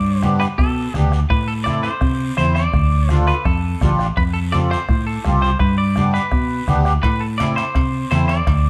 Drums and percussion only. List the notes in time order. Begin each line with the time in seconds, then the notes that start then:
0.23 bombo rim, high conga, short guiro
0.41 bombo rim, short guiro
0.58 bombo low, bombo rim, high conga, long guiro
0.94 bombo rim, high conga, short guiro
1.12 bombo rim, short guiro
1.30 bombo low, bombo rim, high conga, long guiro
1.66 bombo rim, high conga, short guiro
1.84 bombo rim, short guiro
2.01 bombo low, bombo rim, high conga, long guiro
2.37 bombo rim, high conga, short guiro
2.56 bombo rim, short guiro
2.73 bombo low, bombo rim, high conga, long guiro
3.09 bombo rim, high conga, short guiro
3.27 bombo rim, short guiro
3.45 bombo low, bombo rim, high conga, long guiro
3.81 bombo low, bombo rim, high conga, short guiro
3.99 bombo rim, short guiro
4.17 bombo low, bombo rim, high conga, long guiro
4.53 bombo rim, high conga, short guiro
4.71 bombo rim, short guiro
4.89 bombo low, bombo rim, high conga, long guiro
5.25 bombo rim, high conga, short guiro
5.42 bombo rim, short guiro
5.59 bombo low, bombo rim, high conga, long guiro
5.96 bombo rim, high conga, short guiro
6.14 bombo rim, short guiro
6.32 bombo low, bombo rim, high conga, long guiro
6.68 bombo low, bombo rim, high conga, short guiro
6.85 bombo rim, short guiro
7.03 bombo low, bombo rim, high conga, high timbale, long guiro
7.40 bombo rim, high conga, high timbale, short guiro
7.57 bombo rim, high timbale, short guiro
7.75 bombo low, bombo rim, high conga, high timbale, long guiro
8.11 bombo rim, high conga, high timbale, short guiro
8.29 bombo rim, high timbale, short guiro
8.47 bombo low, bombo rim, high conga, high timbale, long guiro